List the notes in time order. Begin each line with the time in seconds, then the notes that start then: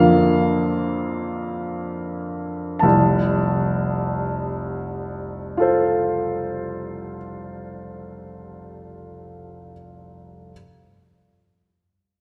Already playing: F2 D3 A#3 F4 F5
2.79 F1 C2 A5
5.57 F4 A4
5.62 C5